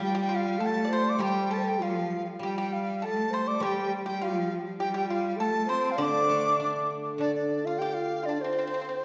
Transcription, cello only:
0.00 0.61 G3 medium
0.59 1.21 A3 medium
1.20 1.81 G3 medium
1.82 2.24 F3 medium
2.43 3.05 G3 medium
3.03 3.64 A3 medium
3.62 3.92 G3 medium
4.08 4.25 G3 medium
4.24 4.67 F3 medium
4.82 5.40 G3 medium
5.39 5.70 A3 medium
5.69 6.01 C4 medium
5.99 6.90 D4 medium

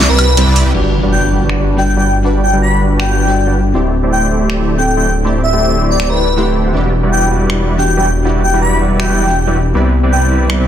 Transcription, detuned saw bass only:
0.09 0.35 C2 medium
0.37 0.45 C2 loud
0.47 0.64 C2 medium
0.65 0.73 C2 medium
0.75 3.73 G1 medium
3.75 6.73 D1 medium
6.75 9.73 E1 medium
9.75 10.68 C2 medium

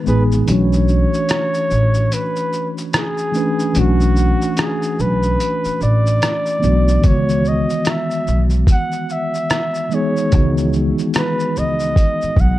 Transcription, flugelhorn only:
0.08 0.24 B4 medium
0.49 2.15 C#5 loud
2.14 2.71 B4 loud
2.97 3.80 G#4 loud
3.79 4.62 F#4 loud
4.61 5.02 G#4 loud
5.01 5.82 B4 loud
5.83 7.08 D5 loud
7.07 7.50 C#5 loud
7.48 7.91 D#5 loud
7.90 8.46 E5 loud
8.71 9.13 F#5 loud
9.12 9.96 E5 loud
9.95 10.76 C#5 medium
11.18 11.60 B4 loud
11.58 12.42 D#5 loud
12.40 12.59 F#5 loud

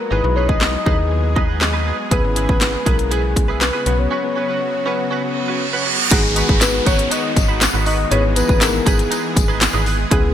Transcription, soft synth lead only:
0.00 0.13 A#4 loud
0.11 0.36 B4 loud
0.36 0.48 C#5 loud
0.49 1.45 D#5 loud
2.12 2.46 B4 loud
2.49 2.88 B4 medium
2.87 3.13 A#4 medium
3.11 3.63 G#4 loud
3.61 4.00 B4 loud
3.99 5.86 C#5 loud
6.12 6.63 G#4 medium
6.61 6.86 B4 loud
6.86 7.13 C#5 loud
7.11 7.61 D#5 loud
7.86 8.10 D#5 loud
8.11 8.23 C#5 loud
8.37 8.63 B4 loud
8.61 8.88 A#4 loud
8.87 9.87 G#4 medium
10.12 10.34 G#4 loud

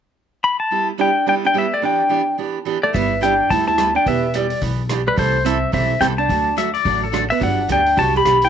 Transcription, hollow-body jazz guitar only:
0.99 1.25 D4 medium
1.28 1.33 D4 medium
1.45 1.56 D4 medium
1.56 1.73 B3 medium
1.73 1.84 A3 medium
1.84 2.35 D4 medium
2.84 2.96 A3 medium
2.96 3.23 B3 medium
3.24 3.49 D4 medium
3.52 3.67 E4 medium
3.68 3.93 E4 medium
3.95 4.05 D4 medium
4.07 4.32 B3 medium
4.37 4.62 G3 medium
5.07 5.17 G3 medium
5.18 5.44 A3 medium
5.45 5.71 C4 medium
5.73 5.99 C4 medium
6.01 6.06 C4 medium
6.18 6.55 D4 medium
7.32 7.42 B3 medium
7.41 7.67 D4 medium
7.72 7.97 D4 medium
8.00 8.16 F#4 medium
8.16 8.43 G4 medium
8.45 8.49 E4 medium

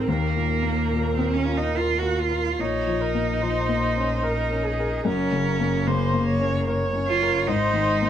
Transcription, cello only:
0.08 1.12 A#3 medium
1.14 1.35 C4 medium
1.34 1.59 C#4 medium
1.57 1.79 D#4 medium
1.77 2.00 F4 medium
1.99 2.20 F#4 medium
2.19 2.62 F4 medium
2.60 5.06 D#4 medium
5.07 5.89 C#4 medium
5.87 6.68 A#3 medium
7.08 7.48 F4 medium
7.47 8.10 D#4 medium

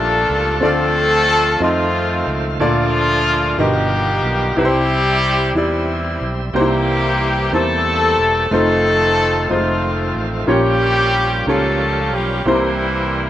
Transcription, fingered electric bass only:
0.00 0.25 A#1 medium
0.30 0.59 C#2 medium
0.63 1.57 D2 medium
1.60 2.22 F2 loud
2.27 2.57 C#2 medium
2.59 3.54 D2 loud
3.58 4.20 G1 loud
4.23 4.53 B1 medium
4.57 5.51 C2 medium
5.54 6.16 E2 medium
6.21 6.51 B1 medium
6.54 7.48 C2 medium
7.52 8.14 E2 loud
8.18 8.48 E1 medium
8.51 9.46 F1 loud
9.50 10.12 F1 loud
10.15 10.46 A1 medium
10.48 11.43 A#1 medium
11.47 12.12 C#2 loud
12.12 12.43 B1 medium
12.46 13.30 C2 medium

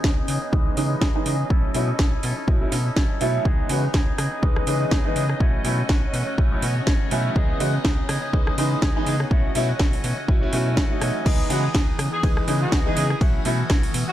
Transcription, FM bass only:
0.04 0.22 C#2 medium
0.28 0.38 C#3 medium
0.53 0.71 C#2 medium
0.77 0.95 C#3 medium
1.01 1.11 C#2 medium
1.26 1.44 C#3 medium
1.50 1.69 B1 loud
1.75 1.93 B2 loud
1.99 2.17 B1 medium
2.24 2.33 B2 loud
2.48 2.66 B1 medium
2.72 2.91 B2 loud
2.96 3.06 B1 loud
3.21 3.39 B2 medium
3.45 3.64 C#2 loud
3.70 3.88 C#3 loud
3.94 4.12 C#2 medium
4.18 4.28 C#3 loud
4.43 4.61 C#2 medium
4.67 4.86 C#3 medium
4.92 5.01 C#2 medium
5.16 5.34 C#3 medium
5.40 5.59 B1 loud
5.65 5.83 B2 loud
5.89 6.08 B1 medium
6.13 6.23 B2 loud
6.38 6.56 B1 medium
6.62 6.81 B2 loud
6.87 6.97 B1 medium
7.11 7.30 B2 medium
7.36 7.54 C#2 loud
7.60 7.79 C#3 loud
7.85 8.03 C#2 medium
8.09 8.19 C#3 loud
8.33 8.52 C#2 medium
8.58 8.76 C#3 medium
8.82 8.92 C#2 loud
9.07 9.25 C#3 medium
9.31 9.49 B1 medium
9.55 9.74 B2 loud
9.80 9.98 B1 medium
10.04 10.14 B2 loud
10.28 10.47 B1 medium
10.53 10.79 B2 loud
10.77 10.87 B1 medium
11.01 11.11 B2 loud
11.26 11.44 C#2 loud
11.50 11.68 C#3 loud
11.75 11.93 C#2 medium
11.99 12.09 C#3 loud
12.23 12.42 C#2 medium
12.48 12.66 C#3 loud
12.72 12.91 C#2 medium
12.97 13.15 C#3 loud
13.21 13.39 B1 loud
13.45 13.64 B2 loud
13.70 13.88 B1 medium
13.94 14.04 B2 loud

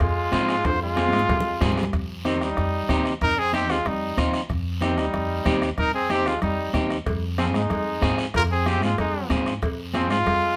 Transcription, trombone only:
0.00 0.68 G#3 medium
0.66 0.82 F4 medium
0.82 1.74 G#3 medium
2.26 2.41 D#3 medium
2.42 3.02 G3 medium
3.24 3.41 D#4 medium
3.40 3.54 C4 medium
3.55 3.72 C4 medium
3.71 3.88 G#3 medium
3.87 4.18 G3 medium
4.82 4.99 D#3 medium
4.98 5.62 G3 medium
5.79 5.93 D#4 loud
5.95 6.11 C4 medium
6.11 6.29 C4 medium
6.28 6.43 G#3 medium
6.44 6.73 G3 medium
7.39 7.46 F3 medium
7.56 8.15 G#3 medium
8.36 8.43 F4 medium
8.51 8.68 C4 medium
8.68 8.83 C4 medium
8.84 8.98 G#3 medium
9.00 9.29 G#3 medium
9.94 10.09 F3 medium
10.11 10.56 G#3 medium

